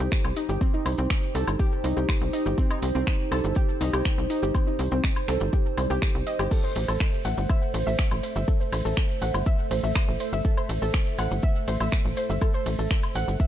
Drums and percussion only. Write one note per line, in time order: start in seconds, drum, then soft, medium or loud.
0.11 finger snap loud
0.11 kick loud
0.11 maracas medium
0.24 low woodblock medium
0.24 maracas soft
0.36 open hi-hat medium
0.49 maracas medium
0.61 kick loud
0.61 maracas medium
0.74 maracas soft
0.86 open hi-hat loud
0.86 low woodblock medium
0.98 maracas medium
1.10 finger snap loud
1.10 kick loud
1.10 maracas medium
1.23 maracas soft
1.35 open hi-hat medium
1.48 low woodblock medium
1.48 maracas medium
1.59 kick loud
1.59 maracas medium
1.72 maracas soft
1.84 open hi-hat loud
1.97 maracas medium
2.08 finger snap loud
2.08 kick loud
2.08 low woodblock medium
2.08 maracas medium
2.21 maracas soft
2.33 open hi-hat medium
2.46 maracas medium
2.58 kick loud
2.58 maracas medium
2.70 low woodblock medium
2.70 maracas soft
2.82 open hi-hat loud
2.95 maracas medium
3.07 finger snap loud
3.07 kick loud
3.07 maracas medium
3.20 maracas soft
3.32 open hi-hat medium
3.32 low woodblock medium
3.44 maracas medium
3.55 kick loud
3.55 maracas medium
3.69 maracas soft
3.81 open hi-hat loud
3.93 low woodblock medium
3.93 maracas medium
4.04 finger snap loud
4.04 kick loud
4.04 maracas medium
4.18 maracas soft
4.30 open hi-hat medium
4.43 maracas medium
4.55 kick loud
4.55 low woodblock medium
4.55 maracas medium
4.68 maracas soft
4.79 open hi-hat loud
4.92 maracas medium
5.04 finger snap loud
5.04 kick loud
5.04 maracas medium
5.16 low woodblock medium
5.16 maracas soft
5.28 finger snap medium
5.28 open hi-hat medium
5.40 maracas medium
5.53 kick loud
5.53 maracas medium
5.66 maracas soft
5.77 open hi-hat loud
5.77 low woodblock medium
5.90 maracas medium
6.02 finger snap loud
6.02 kick loud
6.02 maracas medium
6.15 maracas soft
6.27 open hi-hat medium
6.39 low woodblock medium
6.39 maracas medium
6.51 kick loud
6.51 crash medium
6.51 maracas medium
6.64 maracas soft
6.76 open hi-hat loud
6.76 ride medium
6.88 low woodblock medium
6.88 maracas medium
7.00 finger snap loud
7.00 kick loud
7.00 maracas medium
7.14 maracas soft
7.25 open hi-hat medium
7.25 ride medium
7.37 maracas medium
7.49 kick loud
7.49 low woodblock medium
7.49 maracas medium
7.62 maracas soft
7.74 open hi-hat loud
7.74 ride medium
7.88 maracas medium
7.99 finger snap loud
7.99 kick loud
7.99 maracas medium
8.11 low woodblock medium
8.11 maracas soft
8.23 open hi-hat loud
8.23 ride medium
8.36 maracas medium
8.48 kick loud
8.48 maracas medium
8.61 maracas soft
8.72 open hi-hat loud
8.72 ride medium
8.72 low woodblock medium
8.85 maracas medium
8.97 finger snap loud
8.97 kick loud
8.97 maracas medium
9.10 maracas soft
9.22 open hi-hat medium
9.22 ride medium
9.34 low woodblock medium
9.34 maracas medium
9.46 kick loud
9.46 maracas medium
9.59 maracas soft
9.71 open hi-hat loud
9.71 ride medium
9.84 maracas medium
9.95 finger snap loud
9.95 kick loud
9.95 low woodblock medium
9.95 maracas medium
10.09 maracas soft
10.20 open hi-hat loud
10.20 ride medium
10.33 maracas medium
10.45 kick loud
10.45 maracas medium
10.57 low woodblock soft
10.57 maracas soft
10.69 open hi-hat loud
10.69 ride medium
10.82 maracas medium
10.94 finger snap loud
10.94 kick loud
10.94 maracas medium
11.06 maracas soft
11.19 open hi-hat loud
11.19 ride medium
11.19 low woodblock soft
11.31 maracas medium
11.43 kick loud
11.43 maracas medium
11.56 maracas soft
11.68 open hi-hat loud
11.68 ride medium
11.80 low woodblock medium
11.80 maracas medium
11.92 finger snap loud
11.92 kick loud
11.92 maracas medium
12.05 maracas soft
12.17 open hi-hat loud
12.17 ride medium
12.30 maracas medium
12.41 kick loud
12.41 low woodblock medium
12.41 maracas medium
12.53 maracas soft
12.66 open hi-hat loud
12.66 ride medium
12.79 maracas medium
12.91 finger snap loud
12.91 kick loud
12.91 maracas medium
13.03 low woodblock medium
13.03 maracas soft
13.15 open hi-hat medium
13.15 ride medium
13.29 maracas medium
13.40 kick loud
13.40 maracas medium